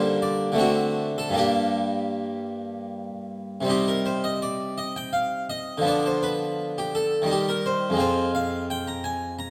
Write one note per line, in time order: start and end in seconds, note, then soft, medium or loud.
0.00 0.51 D3 medium
0.00 0.54 G3 soft
0.00 0.55 A#3 soft
0.00 0.56 D4 soft
0.00 0.16 C5 medium
0.22 0.54 D5 medium
0.52 1.31 D3 soft
0.52 1.32 A3 soft
0.56 1.33 C4 soft
0.56 1.34 D4 soft
0.56 1.09 F#4 medium
1.18 1.38 A4 medium
1.29 3.62 G2 soft
1.29 3.61 G3 soft
1.34 3.64 A#3 soft
1.34 3.65 D4 soft
1.38 3.04 G4 medium
3.61 5.80 C3 soft
3.61 5.81 G3 soft
3.65 5.82 C4 soft
3.65 5.83 D#4 soft
3.70 3.88 G4 medium
3.88 4.06 A#4 medium
4.06 4.25 C5 medium
4.24 4.43 D#5 medium
4.42 4.79 D5 medium
4.78 4.97 D#5 medium
4.96 5.15 G5 medium
5.13 5.45 F5 medium
5.50 5.81 D#5 medium
5.78 7.22 D3 soft
5.78 7.23 F3 soft
5.82 7.24 B3 soft
5.82 7.25 D4 soft
5.87 6.06 D5 medium
6.06 6.24 C5 medium
6.23 6.77 B4 medium
6.78 6.96 G4 medium
6.95 7.31 A4 medium
7.22 7.94 D#3 soft
7.22 7.96 G3 soft
7.26 7.97 D#4 soft
7.31 7.49 G4 medium
7.49 7.66 A#4 medium
7.66 7.96 C5 medium
7.90 9.50 F2 soft
7.90 9.50 G#3 soft
7.95 9.50 C4 soft
7.95 9.50 F4 soft
8.00 8.30 C5 medium
8.35 8.65 F5 medium
8.70 8.88 G5 medium
8.88 9.05 A#5 medium
9.04 9.34 G#5 medium
9.39 9.50 A#5 medium